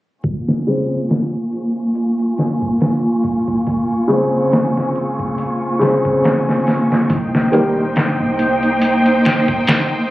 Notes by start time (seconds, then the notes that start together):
0.24 A#3 F4 G#5 C#6, kick, closed hi-hat
0.48 snare
0.67 C#3 G#3 C4, closed hi-hat
1.10 snare, closed hi-hat
1.52 closed hi-hat
1.76 closed hi-hat
1.95 closed hi-hat
2.19 closed hi-hat
2.38 snare, closed hi-hat
2.62 kick
2.81 snare, closed hi-hat
3.24 kick, closed hi-hat
3.48 kick
3.67 kick, closed hi-hat
4.08 C#3 G#3 C4, closed hi-hat
4.52 snare, closed hi-hat
4.77 snare
4.95 closed hi-hat
5.19 kick
5.38 closed hi-hat
5.79 C#3 G#3 C4, snare, closed hi-hat
6.05 kick
6.24 snare, closed hi-hat
6.49 snare
6.67 snare, open hi-hat
6.92 snare
7.10 C2 A#3 D#4 C5 G5, kick, closed hi-hat
7.35 snare
7.52 D#3 G3 A#3, closed hi-hat
7.77 A#1
7.96 snare, closed hi-hat
8.20 C2
8.39 closed hi-hat
8.63 closed hi-hat
8.82 closed hi-hat
9.06 closed hi-hat
9.25 snare, closed hi-hat
9.48 kick
9.67 snare, closed hi-hat